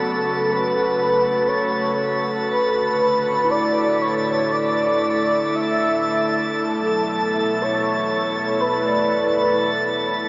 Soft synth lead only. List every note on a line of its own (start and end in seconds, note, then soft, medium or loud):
0.00 0.52 A4 medium
0.50 1.49 B4 medium
1.48 2.26 C#5 medium
2.50 3.52 B4 loud
3.50 4.03 D5 loud
4.01 4.54 C#5 medium
4.52 5.57 D5 loud
5.55 6.33 E5 loud
6.57 7.63 A4 loud
7.62 8.62 C#5 loud
8.60 10.14 B4 medium